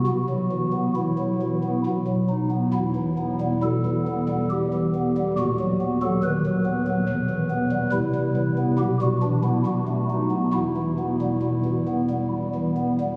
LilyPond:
<<
  \new Staff \with { instrumentName = "Pipe organ" } { \time 3/4 \key e \minor \tempo 4 = 68 fis'4 e'4 r4 | e'4 a'4 g'4 | fis'8. a'16 b'2 | e'4 g'16 fis'16 d'16 e'16 fis'4 |
e'2 r4 | }
  \new Staff \with { instrumentName = "Pipe organ" } { \clef bass \time 3/4 \key e \minor << { b,16 fis16 e16 b16 e16 fis16 e16 b16 b,16 fis16 dis'16 b16 | e,16 e16 b16 g16 b,16 e16 b16 g8 e16 b16 g16 | dis,16 fis16 b16 fis16 dis16 fis16 b16 fis16 e,16 e16 b16 g16 | c16 g16 e16 b16 b,16 g16 e16 b16 b,16 a16 dis'16 b16 |
e,16 e16 b16 g16 b,16 e16 b16 g8 e16 b16 g16 | } \\ { b,,2 b,,4 | e,,2. | dis,,2 e,,4 | c,4 b,,4 b,,4 |
e,,2. | } >> }
>>